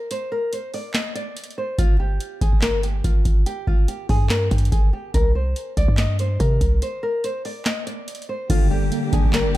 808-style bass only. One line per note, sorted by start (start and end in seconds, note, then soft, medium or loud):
1.79 2.19 G1 loud
2.41 3.02 G1 loud
3.04 3.25 G1 loud
3.25 3.45 G1 loud
3.67 3.87 G1 loud
4.09 4.50 G2 loud
4.51 4.71 G2 loud
4.72 4.92 G1 loud
5.14 5.54 C2 loud
5.77 5.88 C2 loud
5.88 6.38 G2 loud
6.40 6.60 C3 loud
6.61 6.82 C2 loud
8.50 8.90 G1 loud
9.13 9.57 G1 loud